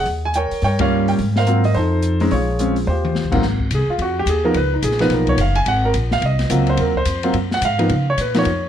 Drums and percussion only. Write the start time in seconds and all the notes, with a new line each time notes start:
0.06 open hi-hat
0.34 closed hi-hat
0.51 open hi-hat
0.62 open hi-hat
0.79 kick, ride
1.08 open hi-hat
1.19 open hi-hat
1.36 snare
1.46 closed hi-hat
1.64 open hi-hat
1.74 open hi-hat
2.02 closed hi-hat
2.20 open hi-hat
2.31 open hi-hat
2.59 closed hi-hat
2.76 open hi-hat
3.05 mid tom
3.15 snare
3.32 kick, crash
3.42 snare
3.60 kick
3.71 hi-hat pedal, ride
3.99 ride
4.27 hi-hat pedal, ride
4.54 ride
4.83 hi-hat pedal, ride
4.91 snare
4.99 snare, ride
5.10 snare, ride
5.27 kick, ride
5.38 hi-hat pedal, ride
5.55 ride
5.66 ride
5.94 hi-hat pedal, ride
6.11 snare
6.22 ride
6.39 snare, ride
6.50 hi-hat pedal, ride
6.67 ride
6.77 ride
6.95 kick
7.05 hi-hat pedal, ride
7.23 ride
7.34 ride
7.51 snare
7.62 hi-hat pedal, ride
7.79 ride
7.89 ride
8.18 hi-hat pedal, ride
8.34 snare, ride
8.45 ride